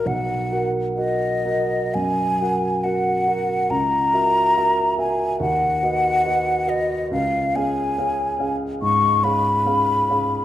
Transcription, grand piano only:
\new Staff \with { instrumentName = "Grand piano" } { \time 4/4 \key b \lydian \tempo 4 = 70 b,,8 <fis' ais' fis''>8 <fis' ais' fis''>8 <fis' ais' fis''>8 fis,8 <fis' ais' fis''>8 <fis' ais' fis''>8 <fis' ais' fis''>8 | cis,8 <fis' ais' e''>8 <fis' ais' e''>8 <fis' ais' e''>8 dis,8 <fis' b' dis''>8 <fis' b' dis''>8 <fis' b' dis''>8 | cis,8 <cis' gis' eis''>8 <cis' gis' eis''>8 <cis' gis' eis''>8 gis,8 <cis' gis' eis''>8 <cis' gis' eis''>8 <cis' gis' eis''>8 | }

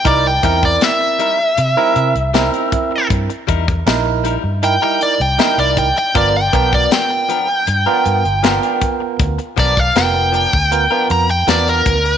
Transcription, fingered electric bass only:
\new Staff \with { instrumentName = "Fingered electric bass" } { \clef bass \time 4/4 \key c \major \tempo 4 = 79 c,8 e,8 r4 c16 r16 c16 c,8 r8. | g,16 r16 e,8 bes,,8. g,8 r8 c,16 r16 c,8 r16 | g,,8 b,,8 r4 g,16 r16 g,16 g,,8 r8. | d,16 r16 b,,8 f,,8. d,8 r16 f,8 e,8 d,8 | }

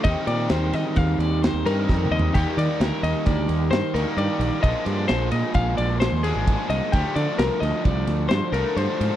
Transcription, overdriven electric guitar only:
\new Staff \with { instrumentName = "Overdriven electric guitar" } { \clef bass \time 5/4 \key c \minor \tempo 4 = 131 <ees g c' ees'>2.~ <ees g c' ees'>8 <ees g c' ees'>4. | <ees g bes ees'>2.~ <ees g bes ees'>8 <ees g bes ees'>4. | <bes, f aes d'>2.~ <bes, f aes d'>8 <bes, f aes d'>4. | <d f a d'>2.~ <d f a d'>8 <d f a d'>4. | }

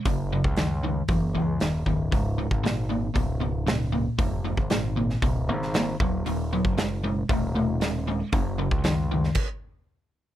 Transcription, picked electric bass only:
\new Staff \with { instrumentName = "Picked electric bass" } { \clef bass \time 4/4 \key ges \major \tempo 4 = 116 ges,,8. des,4~ des,16 ges,,8 des,8 ees,,8 des,,8 | des,,8. aes,,4~ aes,,16 des,,2 | f,,8. aes,,4~ aes,,16 des,,8 aes,,4 ees,,8 | ees,,8. ges,,4~ ges,,16 ees,,2 |
ges,,8. des,4~ des,16 r2 | }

